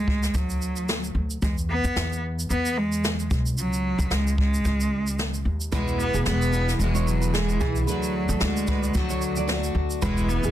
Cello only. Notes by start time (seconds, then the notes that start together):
Already playing: G#3
0.35 F#3
1.43 G#3
1.70 B3
2.51 B3
2.78 G#3
3.59 F#3
4.13 G#3
4.38 G#3
5.73 G#3
6.01 B3
6.26 B3
6.80 G#3
7.07 F#3
7.34 G#3
7.60 E3
7.87 F#3
8.41 G#3
8.95 F#3
10.03 G#3
10.29 B3